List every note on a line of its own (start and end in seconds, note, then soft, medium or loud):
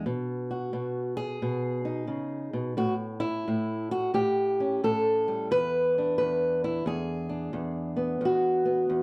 0.06 0.72 B2 medium
0.51 1.16 F#4 soft
0.73 1.41 B2 medium
1.17 2.77 G#4 loud
1.42 2.07 B2 medium
1.85 2.74 D#4 soft
2.07 2.52 C#3 medium
2.53 2.77 B2 medium
2.77 3.45 A2 medium
2.77 2.93 F#4 medium
3.20 3.89 E4 medium
3.48 4.13 A2 medium
3.91 4.14 F#4 medium
4.14 4.82 A2 medium
4.14 4.82 G4 medium
4.60 5.48 C#4 soft
4.84 5.51 A2 medium
4.84 5.51 A4 medium
5.28 5.51 G3 soft
5.51 6.18 E2 medium
5.51 6.17 B4 loud
5.98 7.28 D4 soft
6.18 6.85 E2 medium
6.18 6.62 B4 medium
6.64 6.87 E4 medium
6.86 7.52 E2 medium
6.86 8.90 G#4 medium
7.29 8.18 D4 soft
7.53 8.20 E2 medium
7.97 8.65 B3 soft
8.21 8.88 E2 medium
8.25 9.03 F#4 medium
8.65 9.03 B3 soft
8.90 9.03 E2 medium